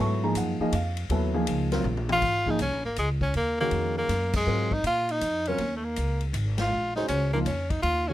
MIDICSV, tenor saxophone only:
0, 0, Header, 1, 2, 480
1, 0, Start_track
1, 0, Tempo, 374065
1, 1418, Time_signature, 3, 2, 24, 8
1, 10436, End_track
2, 0, Start_track
2, 0, Title_t, "Tenor saxophone"
2, 0, Program_c, 0, 66
2, 2728, Note_on_c, 0, 65, 116
2, 3206, Note_on_c, 0, 63, 89
2, 3225, Note_off_c, 0, 65, 0
2, 3348, Note_off_c, 0, 63, 0
2, 3355, Note_on_c, 0, 61, 96
2, 3639, Note_off_c, 0, 61, 0
2, 3665, Note_on_c, 0, 58, 80
2, 3813, Note_off_c, 0, 58, 0
2, 3833, Note_on_c, 0, 56, 82
2, 3971, Note_off_c, 0, 56, 0
2, 4138, Note_on_c, 0, 61, 85
2, 4289, Note_off_c, 0, 61, 0
2, 4321, Note_on_c, 0, 58, 96
2, 4603, Note_off_c, 0, 58, 0
2, 4630, Note_on_c, 0, 58, 87
2, 5068, Note_off_c, 0, 58, 0
2, 5110, Note_on_c, 0, 58, 92
2, 5549, Note_off_c, 0, 58, 0
2, 5598, Note_on_c, 0, 56, 87
2, 6072, Note_on_c, 0, 63, 92
2, 6091, Note_off_c, 0, 56, 0
2, 6228, Note_off_c, 0, 63, 0
2, 6244, Note_on_c, 0, 65, 104
2, 6560, Note_on_c, 0, 63, 105
2, 6579, Note_off_c, 0, 65, 0
2, 7032, Note_on_c, 0, 61, 91
2, 7051, Note_off_c, 0, 63, 0
2, 7384, Note_off_c, 0, 61, 0
2, 7399, Note_on_c, 0, 57, 50
2, 7503, Note_on_c, 0, 58, 75
2, 7523, Note_off_c, 0, 57, 0
2, 7978, Note_off_c, 0, 58, 0
2, 8474, Note_on_c, 0, 65, 91
2, 8911, Note_off_c, 0, 65, 0
2, 8930, Note_on_c, 0, 63, 90
2, 9086, Note_off_c, 0, 63, 0
2, 9092, Note_on_c, 0, 61, 93
2, 9387, Note_off_c, 0, 61, 0
2, 9411, Note_on_c, 0, 58, 86
2, 9486, Note_off_c, 0, 58, 0
2, 9580, Note_on_c, 0, 61, 90
2, 9886, Note_on_c, 0, 63, 81
2, 9905, Note_off_c, 0, 61, 0
2, 10032, Note_off_c, 0, 63, 0
2, 10040, Note_on_c, 0, 65, 107
2, 10369, Note_on_c, 0, 61, 95
2, 10389, Note_off_c, 0, 65, 0
2, 10436, Note_off_c, 0, 61, 0
2, 10436, End_track
0, 0, End_of_file